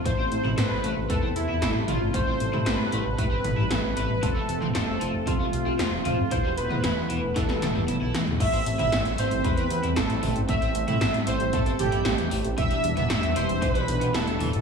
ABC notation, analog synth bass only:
X:1
M:4/4
L:1/16
Q:1/4=115
K:Am
V:1 name="Analog synth bass" clef=bass
A,,, A,,, A,,, A,,, A,,, A,,, A,,, A,,, E,, E,, E,, E,, A,,, A,,, A,,, A,,, | A,,, A,,, A,,, A,, A,,, A,, A,,, A,,, A,, G,,, A,,, A,,, A,,, A,,, A,,, A,,, | F,,, F,,, F,,, F,,, F,,, F,,, F,,, F,,, C,, C,, C,, C,, F,,, F,,, F,,, F,,, | E,,, E,,, E,,, E,, E,,, E,, E,,, E,,, E,, D,,, E,,, E,,, E,,, B,,, E,,, E,,, |
A,,, A,,, A,,, A,,, A,,, A,,, A,,, A,,, E,, E,, E,, E,, A,,, A,,, A,,, A,,, | A,,, A,,, A,,, A,, A,,, A,, A,,, A,,, A,, G,,, A,,, A,,, A,,, E,, A,,, A,,, | E,,, E,,, E,,, E,,, E,,, E,,, E,,, E,,, B,,, B,,, B,,, B,,, E,,, E,,, E,,, E,,, |]